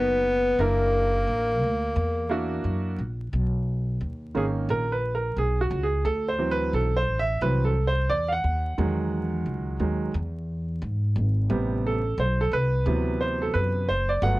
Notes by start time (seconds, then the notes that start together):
Already playing: F#1 B3 D#4 F#4 B4
0.59 F#1 A#3 D4 E4 A#4
1.27 A1
1.61 D2
1.96 E2
2.29 A#3 D4 E4 F#4
2.64 F#2
2.98 A#1
3.33 B1
4.01 D#2
4.35 G#1 D#3 A#3 C#4 G#4
4.69 A#1 A#4
4.92 B4
5.15 A#4
5.37 B1 G#4
5.61 F#4
5.71 C#2
5.83 G#4
6.05 D2 A4
6.28 C5
6.38 E3 F#3 C4
6.51 B4
6.73 B1 A4
6.97 C5
7.07 A1
7.19 E5
7.41 C2 E3 F#3 C4 B4
7.65 A4
7.87 C5
8.10 E2 D5
8.28 F5
8.32 F#5
8.44 D#2
8.78 E2 D#3 F#3 G#3
9.46 C#2
9.79 D#2 D#3 F#3 G#3
10.14 E2
10.82 G#2
11.16 G#1
11.49 A1 C3 G3 B3
11.87 A4
12.18 B1 C5
12.41 A4
12.52 C2 B4
12.86 D2 C3 E3 F#3 B3
13.21 C5
13.42 A4
13.54 F#2 B4
13.88 F#1 C5
14.09 D5
14.22 G1 F#3 A3 B3 F#5